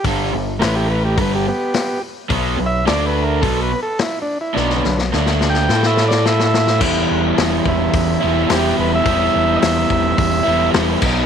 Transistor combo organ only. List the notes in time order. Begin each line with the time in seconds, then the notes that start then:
0.60 A#4
0.64 B4
0.76 G4
0.86 A#4
0.91 B4
1.05 G4
1.17 A#4
1.21 B4
1.35 G4
1.48 B3 G4
2.66 E5
2.87 D5
3.06 B4
3.24 A#4
3.41 A4
3.63 B4
3.83 A4
4.02 E4
4.22 D4
4.41 E4
4.55 D4
4.76 D3 B3
5.50 G5
5.86 E5
6.08 D5
6.28 E5
6.46 E5
7.69 E4
8.49 G4
8.81 B4
8.95 E5
9.56 D#5
9.61 E5